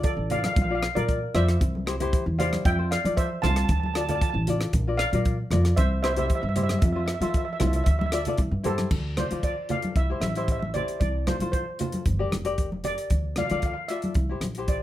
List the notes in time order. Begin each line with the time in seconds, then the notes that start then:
Already playing: F4 A4 D5
0.03 A4 D5, kick, closed hi-hat
0.17 A1
0.30 F4 A4 D5 F5, closed hi-hat, low conga
0.39 F5
0.44 F5, cross-stick, closed hi-hat, high conga
0.54 A#1 F5, kick, closed hi-hat
0.62 F5
0.69 F4 A#4 D5 F5
0.75 F5
0.82 F5, cross-stick, closed hi-hat
0.95 A#2 F4 A#4 D5, closed hi-hat, high conga
1.08 kick, closed hi-hat
1.34 F2 F4 A#4 C5 D5 E5, cross-stick, closed hi-hat, low conga
1.48 cross-stick, closed hi-hat
1.61 C2, kick, closed hi-hat
1.75 high conga
1.86 E4 G4 C5, cross-stick, closed hi-hat
2.00 E4 G4 C5, closed hi-hat, low conga
2.13 kick, closed hi-hat
2.26 E2
2.38 E4 G4 C5 D5 F5, closed hi-hat, low conga
2.53 cross-stick, closed hi-hat, high conga
2.65 F2 E5 G5, kick, closed hi-hat
2.78 F4 A4 C5
2.91 D5 F5, cross-stick, closed hi-hat
3.04 F3 F4 A4 D5, closed hi-hat, high conga
3.17 C5 E5, kick, closed hi-hat
3.42 C2 F4 A4 C5 F5 A5, cross-stick, closed hi-hat, low conga
3.50 A5
3.56 A5, cross-stick, closed hi-hat
3.64 A5
3.69 D2 A5, kick, closed hi-hat
3.80 A5, high conga
3.86 A5
3.94 F4 A4 D5 A5, cross-stick, closed hi-hat
4.01 A5
4.08 F4 A4 D5 A5, closed hi-hat, low conga
4.15 A5
4.21 A5, kick, closed hi-hat
4.29 A5
4.34 A1
4.47 F4 A4 D5, closed hi-hat, low conga
4.61 cross-stick, closed hi-hat
4.73 A#1, kick, closed hi-hat
4.87 F4 A#4 D5
4.97 D5 F5, cross-stick, closed hi-hat
5.13 A#2 F4 A#4 D5, closed hi-hat, high conga
5.25 kick, closed hi-hat
5.50 F2 F4 A#4 D5, cross-stick, closed hi-hat, low conga
5.65 cross-stick, closed hi-hat
5.76 C2 C5 E5, kick, closed hi-hat
6.03 E4 G4 C5 E5, cross-stick, closed hi-hat
6.11 E5
6.16 E4 G4 C5 E5, closed hi-hat, low conga
6.27 E5, kick, closed hi-hat
6.35 E5
6.42 G2 E5
6.49 E5
6.56 E4 G4 C5 E5, closed hi-hat, low conga
6.63 E5
6.69 E5, cross-stick, closed hi-hat, high conga
6.79 F2 E5, kick, closed hi-hat
6.85 E5
6.93 F4 A4 C5 E5
6.99 E5
7.06 E5, cross-stick, closed hi-hat
7.14 E5
7.21 F3 F4 A4 C5 E5, closed hi-hat, high conga
7.29 E5
7.34 E5, kick, closed hi-hat
7.45 E5
7.53 E5
7.59 C2 F4 A4 C5 E5, cross-stick, closed hi-hat, high conga, low conga
7.67 E5
7.73 E5, closed hi-hat
7.84 D2 E5, kick, closed hi-hat
7.91 E5
7.99 E5, high conga
8.06 E5
8.12 F4 A4 D5 E5, cross-stick, closed hi-hat
8.25 F4 A4 D5, closed hi-hat, low conga
8.38 C2, kick, closed hi-hat
8.51 G2
8.63 E4 G4 A4 C5, closed hi-hat, high conga, low conga
8.78 cross-stick, closed hi-hat, high conga
8.91 D2, kick, crash
9.17 F4 A4 C5 D5, cross-stick, closed hi-hat, high conga, low conga
9.31 D2 F4 A4 D5, closed hi-hat, high conga
9.43 D5, kick, closed hi-hat
9.69 F4 A4 D5 F5, closed hi-hat, low conga
9.82 closed hi-hat, high conga
9.96 C2 E5, kick, closed hi-hat
10.10 E4 G4 C5
10.20 A1 E5, cross-stick, closed hi-hat, high conga
10.29 E5
10.35 E4 G4 C5 E5, closed hi-hat
10.44 E5
10.48 E5, kick, closed hi-hat
10.59 E5, high conga
10.74 E4 G4 C5 D5, closed hi-hat, low conga
10.88 closed hi-hat
11.00 C2 D5, kick, closed hi-hat
11.27 F4 A4 C5, cross-stick, closed hi-hat, high conga, low conga
11.40 C2 F4 A4 C5, closed hi-hat, high conga
11.52 C5, kick, closed hi-hat
11.79 F4 A4 C5, closed hi-hat, low conga
11.92 closed hi-hat, high conga
12.06 G1, kick, closed hi-hat
12.19 G4 A#4 D5
12.31 F1, cross-stick, closed hi-hat, high conga
12.45 G4 A#4 D5, closed hi-hat
12.58 kick, closed hi-hat
12.72 high conga
12.84 G4 A#4 D5, closed hi-hat, low conga
12.98 closed hi-hat
13.10 D2, kick, closed hi-hat
13.36 F4 A4 D5 F5, cross-stick, closed hi-hat, high conga, low conga
13.46 F5
13.50 D2 F4 A4 D5 F5, closed hi-hat, high conga
13.60 F5, kick, closed hi-hat
13.66 F5
13.74 F5
13.88 F4 A4 D5 E5, closed hi-hat
14.02 closed hi-hat, high conga
14.14 C2, kick, closed hi-hat
14.29 E4 G4 C5
14.41 A#1, cross-stick, closed hi-hat, high conga
14.55 E4 G4 C5, closed hi-hat
14.68 D5, kick, closed hi-hat